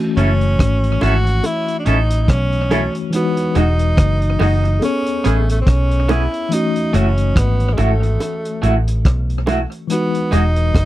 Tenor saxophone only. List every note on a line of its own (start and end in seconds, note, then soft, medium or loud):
0.17 1.05 C#4 loud
1.03 1.47 F#4 medium
1.46 1.79 E4 loud
1.79 1.87 D4 medium
1.85 2.22 D#4 medium
2.22 2.31 D#4 medium
2.30 2.95 C#4 medium
3.15 3.59 B3 medium
3.58 4.41 D#4 loud
4.42 4.80 D#4 medium
4.84 5.28 C#4 medium
5.27 5.50 A3 medium
5.51 5.61 A3 medium
5.61 5.70 C4 medium
5.69 6.13 C#4 medium
6.12 6.55 E4 medium
6.54 6.97 D#4 medium
6.96 7.40 C#4 medium
7.38 7.75 B3 medium
7.73 7.81 G#3 medium
7.80 8.64 A3 medium
9.91 10.35 B3 medium
10.34 10.85 D#4 loud